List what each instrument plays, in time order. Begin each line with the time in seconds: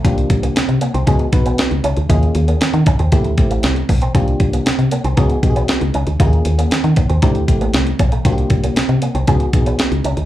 0.04 fm bass C2, fm electric piano A#3 D4 F4 G4, clean electric guitar C4, kick, closed hi-hat
0.18 closed hi-hat
0.30 fm bass C2, muted clean electric guitar stroke, kick, closed hi-hat
0.43 clean electric guitar A#3, closed hi-hat
0.56 fm bass C3, muted clean electric guitar stroke, snare, closed hi-hat
0.69 fm bass C3, closed hi-hat
0.81 clean electric guitar A#3, closed hi-hat
0.94 fm bass C2, clean electric guitar C4, closed hi-hat
1.06 fm bass C#2, fm electric piano B3 D#4 F#4 G#4, clean electric guitar C#4, kick, closed hi-hat
1.19 muted clean electric guitar stroke, closed hi-hat
1.32 fm bass B1, fm electric piano B3 D#4 F#4 B4, kick, closed hi-hat
1.46 clean electric guitar B3, closed hi-hat
1.58 snare, closed hi-hat
1.71 fm bass C#2, closed hi-hat
1.84 fm bass C#2, clean electric guitar C#4, closed hi-hat
1.97 fm bass D2, closed hi-hat
2.09 fm bass D#2, fm electric piano A#3 C#4 F4 G#4, clean electric guitar D#4, kick, closed hi-hat
2.23 closed hi-hat
2.35 fm bass D#2, muted clean electric guitar stroke, closed hi-hat
2.48 clean electric guitar A#3, closed hi-hat
2.61 fm bass D#3, muted clean electric guitar stroke, snare, closed hi-hat
2.74 fm bass D#3, closed hi-hat
2.86 clean electric guitar C#4, kick, closed hi-hat
2.99 fm bass D#2, clean electric guitar C4, closed hi-hat
3.12 fm bass D2, fm electric piano A3 C4 E4 G4, clean electric guitar A#3, kick, closed hi-hat
3.24 muted clean electric guitar stroke, closed hi-hat
3.38 fm bass A1, fm electric piano A3 C4 E4 G4, kick, closed hi-hat
3.51 clean electric guitar A3, closed hi-hat
3.63 fm bass C2, muted clean electric guitar stroke, snare, closed hi-hat
3.76 closed hi-hat
3.89 fm bass B1, clean electric guitar A#3, kick, open hi-hat
4.02 clean electric guitar C4, closed hi-hat
4.14 fm bass C2, fm electric piano A#3 D4 F4 G4, clean electric guitar C4, kick, closed hi-hat
4.28 closed hi-hat
4.40 fm bass C2, muted clean electric guitar stroke, kick, closed hi-hat
4.53 clean electric guitar A#3, closed hi-hat
4.66 fm bass C3, muted clean electric guitar stroke, snare, closed hi-hat
4.79 fm bass C3, closed hi-hat
4.91 clean electric guitar A#3, closed hi-hat
5.04 fm bass C2, clean electric guitar C4, closed hi-hat
5.17 fm bass C#2, fm electric piano B3 D#4 F#4 G#4, clean electric guitar C#4, kick, closed hi-hat
5.30 muted clean electric guitar stroke, closed hi-hat
5.43 fm bass B1, fm electric piano B3 D#4 F#4 G4, kick, closed hi-hat
5.50 fm electric piano G#4
5.56 clean electric guitar B3, closed hi-hat
5.68 snare, closed hi-hat
5.81 fm bass C#2, closed hi-hat
5.94 fm bass C#2, clean electric guitar C#4, closed hi-hat
6.07 fm bass D2, closed hi-hat
6.20 fm bass D#2, fm electric piano A#3 C#4 F4 G4, clean electric guitar D#4, kick, closed hi-hat
6.27 fm electric piano G#4
6.33 closed hi-hat
6.45 fm bass D#2, muted clean electric guitar stroke, closed hi-hat
6.58 clean electric guitar A#3, closed hi-hat
6.71 fm bass D#3, muted clean electric guitar stroke, snare, closed hi-hat
6.84 fm bass D#3, closed hi-hat
6.96 clean electric guitar A#3, kick, closed hi-hat
7.10 fm bass D#2, clean electric guitar C4, closed hi-hat
7.22 fm bass D2, fm electric piano A3 C4 E4 G4, clean electric guitar D4, kick, closed hi-hat
7.35 muted clean electric guitar stroke, closed hi-hat
7.48 fm bass A1, fm electric piano A3 C4 E4 G4, kick, closed hi-hat
7.61 clean electric guitar A#3, closed hi-hat
7.74 fm bass C2, muted clean electric guitar stroke, snare, closed hi-hat
7.87 closed hi-hat
7.99 fm bass B1, clean electric guitar C4, kick, closed hi-hat
8.12 clean electric guitar A3, closed hi-hat
8.25 fm bass C2, fm electric piano A#3 D4 F4 F#4, clean electric guitar C4, kick, closed hi-hat
8.32 fm electric piano G4
8.38 closed hi-hat
8.50 fm bass C2, muted clean electric guitar stroke, kick, closed hi-hat
8.64 clean electric guitar A#3, closed hi-hat
8.76 fm bass C3, muted clean electric guitar stroke, snare, closed hi-hat
8.89 fm bass C3, closed hi-hat
9.02 clean electric guitar A#3, closed hi-hat
9.15 fm bass C2, clean electric guitar C4, closed hi-hat
9.27 fm bass C#2, fm electric piano B3 D#4 F#4 G#4, clean electric guitar C#4, kick, closed hi-hat
9.40 muted clean electric guitar stroke, closed hi-hat
9.53 fm bass B1, fm electric piano B3 D#4 F#4 G#4, kick, closed hi-hat
9.66 clean electric guitar B3, closed hi-hat
9.79 snare, closed hi-hat
9.92 fm bass C#2, closed hi-hat
10.04 fm bass C#2, clean electric guitar C#4, closed hi-hat
10.17 fm bass D2, closed hi-hat